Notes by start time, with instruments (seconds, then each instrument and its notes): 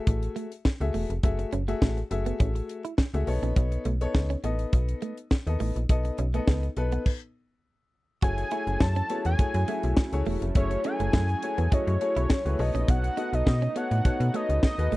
Already playing: grand piano A3 F#4 G#4 E5
0.07 fm bass A1, kick, closed hi-hat
0.23 closed hi-hat
0.36 clean electric guitar A3, closed hi-hat
0.52 closed hi-hat
0.65 kick, snare
0.80 fm bass C#2, grand piano A3 F#4 G#4 E5, closed hi-hat
0.94 fm bass E1, clean electric guitar A3, open hi-hat
1.10 fm bass F1, closed hi-hat
1.23 fm bass F#1, grand piano A3 F#4 G#4 E5, kick, closed hi-hat
1.39 muted clean electric guitar stroke, closed hi-hat
1.52 fm bass F#1, clean electric guitar C#4, closed hi-hat
1.68 grand piano A3 F#4 G#4 E5, clean electric guitar A3, closed hi-hat
1.82 fm bass A1, clean electric guitar A3, kick, snare
1.97 muted clean electric guitar stroke, closed hi-hat
2.11 fm bass F#1, grand piano A3 F#4 G#4 E5, closed hi-hat
2.26 clean electric guitar B3, closed hi-hat
2.40 fm bass A1, clean electric guitar C#4, kick, closed hi-hat
2.55 muted clean electric guitar stroke, closed hi-hat
2.69 closed hi-hat
2.85 clean electric guitar E4, closed hi-hat
2.98 clean electric guitar C#4, kick, snare
3.14 fm bass C#2, grand piano A3 F#4 G#4 E5, closed hi-hat
3.27 fm bass B1, grand piano B3 D#4 A4 C#5, muted clean electric guitar stroke, open hi-hat
3.43 fm bass A#1, clean electric guitar C#4, closed hi-hat
3.56 fm bass B1, clean electric guitar B3, kick, closed hi-hat
3.72 muted clean electric guitar stroke, closed hi-hat
3.85 fm bass B1, clean electric guitar A3, closed hi-hat
4.01 grand piano B3 D#4 A4 C#5, closed hi-hat
4.15 fm bass C#2, muted clean electric guitar stroke, kick, snare
4.30 clean electric guitar C#4, closed hi-hat
4.44 fm bass A1, grand piano B3 D#4 A4 D#5, clean electric guitar B3, closed hi-hat
4.59 closed hi-hat
4.73 fm bass B1, kick, closed hi-hat
4.89 closed hi-hat
5.02 clean electric guitar A3, closed hi-hat
5.17 closed hi-hat
5.31 kick, snare
5.47 fm bass D#2, grand piano B3 D#4 A4 D#5, closed hi-hat
5.60 fm bass A1, clean electric guitar A3, open hi-hat
5.76 fm bass A#1, closed hi-hat
5.89 fm bass B1, grand piano B3 D#4 A4 D#5, kick, closed hi-hat
6.05 muted clean electric guitar stroke, closed hi-hat
6.18 fm bass B1, clean electric guitar C#4, closed hi-hat
6.34 clean electric guitar A3, grand piano B3 D#4 A4 D#5, closed hi-hat
6.47 fm bass C#2, clean electric guitar B3, kick, snare
6.63 muted clean electric guitar stroke, closed hi-hat
6.77 fm bass B1, grand piano B3 D#4 A4 B4, closed hi-hat
6.92 clean electric guitar B3, closed hi-hat
7.06 kick, crash
8.22 fm bass F#1, analog synth pad F#3 A3 C#4 E4 F#4, grand piano A3 E4 F#4 G#4 C#5, clean electric guitar F#4, analog synth lead G#5, kick, closed hi-hat
8.38 muted clean electric guitar stroke, closed hi-hat
8.51 grand piano A3 E4 F#4 G#4 C#5, clean electric guitar E4, closed hi-hat
8.67 fm bass F#1, closed hi-hat
8.80 fm bass F#2, analog synth lead A5, muted clean electric guitar stroke, kick, snare
8.96 clean electric guitar C#4, closed hi-hat
9.10 grand piano A3 E4 F#4 G#4 C#5, clean electric guitar B3, closed hi-hat
9.25 fm bass E2, analog synth lead G#5, closed hi-hat
9.39 grand piano A3 E4 F#4 G#4 C#5, kick, closed hi-hat
9.54 fm bass F#2, closed hi-hat
9.68 grand piano A3 E4 F#4 G#4 E5, clean electric guitar A3, closed hi-hat
9.83 fm bass B1, closed hi-hat
9.97 kick, snare
10.13 fm bass C#2, grand piano A3 E4 F#4 G#4 C#5, closed hi-hat
10.26 fm bass E1, clean electric guitar A3, open hi-hat
10.42 fm bass F1, closed hi-hat
10.55 fm bass F#1, grand piano A3 E4 F#4 G#4 E5, analog synth pad F#4, analog synth lead C#5, kick, closed hi-hat
10.71 muted clean electric guitar stroke, closed hi-hat
10.84 grand piano A3 E4 F#4 G#4 C#5, clean electric guitar C#4, analog synth lead G#5, closed hi-hat
11.00 fm bass F#1, clean electric guitar A3, closed hi-hat
11.13 fm bass F#2, clean electric guitar A3, kick, snare
11.29 muted clean electric guitar stroke, closed hi-hat
11.43 grand piano A3 E4 F#4 G#4 C#5, closed hi-hat
11.58 fm bass E2, clean electric guitar B3, closed hi-hat
11.72 grand piano A3 E4 F#4 G#4 D#5, clean electric guitar C#4, analog synth lead C#5, kick, closed hi-hat
11.87 fm bass F#2, muted clean electric guitar stroke, closed hi-hat
12.01 grand piano A3 E4 F#4 G#4 C#5, closed hi-hat
12.16 fm bass B1, clean electric guitar E4, closed hi-hat
12.30 clean electric guitar C#4, kick, snare
12.45 fm bass C#2, grand piano A3 E4 F#4 G#4 B4, closed hi-hat
12.59 fm bass B1, analog synth pad A3 B3 D#4, grand piano B3 D#4 F#4 A4 C#5, analog synth lead D#5, muted clean electric guitar stroke, open hi-hat
12.75 fm bass A#1, clean electric guitar C#4, closed hi-hat
12.88 fm bass B1, clean electric guitar B3, analog synth lead F#5, kick, closed hi-hat
13.04 muted clean electric guitar stroke, closed hi-hat
13.17 grand piano B3 D#4 F#4 A4 D#5, clean electric guitar D#4, closed hi-hat
13.33 fm bass B1, analog synth lead D#5, closed hi-hat
13.46 fm bass B2, muted clean electric guitar stroke, kick, snare
13.62 clean electric guitar C#4, closed hi-hat
13.75 grand piano B3 D#4 F#4 A4 C#5, clean electric guitar B3, analog synth lead F#5, closed hi-hat
13.91 fm bass A2, closed hi-hat
14.05 fm bass B2, grand piano B3 D#4 F#4 A4 C#5, kick, closed hi-hat
14.20 fm bass B2, closed hi-hat
14.34 clean electric guitar A3, grand piano B3 D#4 F#4 A4 C#5, analog synth lead D#5, closed hi-hat
14.49 fm bass C#2, closed hi-hat
14.63 analog synth lead D#5, kick, snare
14.78 fm bass D#2, grand piano B3 D#4 F#4 A4 B4, closed hi-hat
14.92 fm bass A1, clean electric guitar A3, open hi-hat